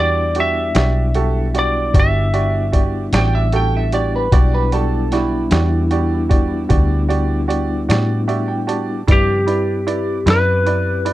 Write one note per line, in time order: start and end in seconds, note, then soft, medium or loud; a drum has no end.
0.00 0.72 E2 medium
0.00 4.28 G3 medium
0.00 4.28 B3 medium
0.00 4.28 D4 medium
0.00 4.28 E4 medium
0.00 0.26 F#4 soft
0.00 0.26 G4 soft
0.00 0.27 D5 medium
0.00 0.39 D5 medium
0.35 0.65 F#4 soft
0.35 0.66 G4 soft
0.35 0.66 D5 medium
0.35 closed hi-hat medium
0.40 1.58 E5 medium
0.75 1.91 B1 medium
0.75 1.05 F#4 soft
0.75 1.05 G4 soft
0.75 1.05 D5 medium
0.75 snare loud
0.75 closed hi-hat medium
1.15 1.45 F#4 medium
1.15 1.45 G4 soft
1.15 1.45 A4 medium
1.15 closed hi-hat medium
1.54 1.84 F#4 soft
1.54 1.84 G4 soft
1.54 1.85 D5 medium
1.54 closed hi-hat medium
1.59 1.97 D5 medium
1.94 3.10 G1 medium
1.94 2.24 F#4 medium
1.94 2.24 G4 soft
1.94 2.25 D5 medium
1.94 kick loud
1.94 closed hi-hat medium
2.00 2.82 E5 medium
2.33 2.63 F#4 medium
2.33 2.64 G4 soft
2.33 2.64 D5 medium
2.33 closed hi-hat medium
2.72 3.03 F#4 soft
2.72 3.03 G4 soft
2.72 3.03 D5 medium
2.72 kick medium
2.72 closed hi-hat medium
3.13 4.28 A1 medium
3.13 3.43 F#4 medium
3.13 3.43 G4 medium
3.13 3.43 D5 medium
3.13 3.33 G5 medium
3.13 snare loud
3.13 closed hi-hat medium
3.35 3.53 E5 medium
3.52 3.83 F#4 medium
3.52 3.83 G4 medium
3.52 3.83 A4 medium
3.52 3.74 G5 medium
3.52 closed hi-hat medium
3.77 3.94 E5 medium
3.92 4.22 F#4 medium
3.92 4.23 G4 medium
3.92 4.23 D5 medium
3.92 4.13 D5 medium
3.92 closed hi-hat medium
4.16 4.33 B4 medium
4.31 5.48 B1 medium
4.31 9.03 G3 medium
4.31 9.03 B3 medium
4.31 9.03 D4 medium
4.31 9.03 E4 medium
4.31 4.62 F#4 medium
4.31 4.62 G4 medium
4.31 4.62 D5 medium
4.31 4.53 D5 medium
4.31 kick medium
4.31 closed hi-hat medium
4.54 4.72 B4 medium
4.72 5.02 F#4 medium
4.72 5.02 G4 soft
4.72 5.11 A4 medium
4.72 5.02 D5 medium
4.72 closed hi-hat medium
5.12 7.46 E4 medium
5.12 5.42 F#4 medium
5.12 5.42 G4 medium
5.12 5.42 D5 medium
5.12 snare soft
5.12 closed hi-hat medium
5.51 6.67 E2 medium
5.51 5.81 F#4 medium
5.51 5.81 G4 soft
5.51 5.81 D5 medium
5.51 snare medium
5.51 closed hi-hat medium
5.91 6.20 F#4 medium
5.91 6.21 G4 medium
5.91 6.21 D5 medium
5.91 closed hi-hat medium
6.29 6.60 F#4 medium
6.29 6.60 G4 medium
6.29 6.60 D5 medium
6.29 kick medium
6.29 closed hi-hat medium
6.69 7.86 D2 medium
6.69 6.99 F#4 medium
6.69 6.99 G4 medium
6.69 7.00 D5 medium
6.69 kick loud
6.69 closed hi-hat medium
7.09 7.39 F#4 medium
7.09 7.39 G4 medium
7.09 7.39 D5 medium
7.09 closed hi-hat medium
7.48 7.78 F#4 medium
7.48 7.78 G4 medium
7.48 7.79 D5 medium
7.48 closed hi-hat medium
7.89 9.04 A2 medium
7.89 8.18 F#4 medium
7.89 8.19 G4 medium
7.89 8.19 D5 medium
7.89 snare loud
7.89 closed hi-hat medium
8.28 8.58 F#4 medium
8.28 8.58 G4 soft
8.28 8.58 D5 medium
8.28 8.46 E5 soft
8.28 closed hi-hat soft
8.48 8.66 G5 medium
8.67 8.97 F#4 medium
8.67 8.98 G4 medium
8.67 8.98 D5 medium
8.67 9.05 A5 soft
8.67 closed hi-hat medium
9.07 10.23 G2 medium
9.07 9.48 C#3 medium
9.07 9.48 F3 medium
9.07 9.48 G3 medium
9.07 9.47 C4 medium
9.07 9.37 E4 medium
9.07 9.38 B4 medium
9.07 9.38 D5 medium
9.07 kick loud
9.07 closed hi-hat medium
9.12 10.32 G4 medium
9.47 11.13 C4 medium
9.47 9.77 E4 soft
9.47 11.13 E4 medium
9.47 11.13 G4 medium
9.47 9.77 B4 soft
9.47 9.77 D5 soft
9.47 closed hi-hat medium
9.87 10.16 E4 soft
9.87 10.16 B4 soft
9.87 10.17 D5 medium
9.87 closed hi-hat medium
10.26 11.13 F#2 medium
10.26 10.56 E4 soft
10.26 10.56 B4 soft
10.26 10.56 D5 medium
10.26 snare loud
10.26 closed hi-hat medium
10.30 11.13 B4 medium
10.66 10.96 E4 soft
10.66 10.96 B4 soft
10.66 10.96 D5 medium
10.66 closed hi-hat medium
11.05 11.13 E4 soft
11.05 11.13 B4 soft
11.05 11.13 D5 medium
11.05 closed hi-hat medium